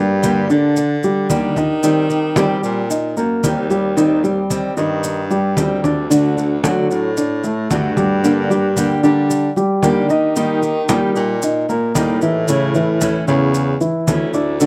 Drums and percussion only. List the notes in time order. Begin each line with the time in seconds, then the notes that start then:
0.23 high conga, maracas
0.50 high conga, maracas
0.76 high conga, maracas
1.03 high conga, maracas
1.30 high conga, maracas
1.56 high conga, maracas
1.83 high conga, maracas
2.10 high conga, maracas
2.36 high conga, maracas
2.64 maracas
2.91 high conga, maracas
3.17 high conga, maracas
3.44 high conga, maracas
3.71 maracas
3.97 high conga, maracas
4.24 high conga, maracas
4.50 high conga, maracas
4.77 high conga, maracas
5.04 high conga, maracas
5.31 high conga, maracas
5.57 high conga, maracas
5.84 high conga, maracas
6.11 high conga, maracas
6.37 high conga, maracas
6.64 high conga, maracas
6.91 maracas
7.17 high conga, maracas
7.44 high conga, maracas
7.71 high conga, maracas
7.97 high conga, maracas
8.24 high conga, maracas
8.50 high conga, maracas
8.77 high conga, maracas
9.03 high conga, maracas
9.30 high conga, maracas
9.56 high conga, maracas
9.83 high conga, maracas
10.10 maracas
10.36 high conga, maracas
10.63 high conga, maracas
10.89 high conga, maracas
11.16 maracas
11.42 high conga, maracas
11.69 high conga, maracas
11.95 high conga, maracas
12.22 maracas
12.48 high conga, maracas
12.74 high conga, maracas
13.01 high conga, maracas
13.28 high conga, maracas
13.54 high conga, maracas
13.81 high conga, maracas
14.08 high conga, maracas
14.34 maracas
14.60 high conga, maracas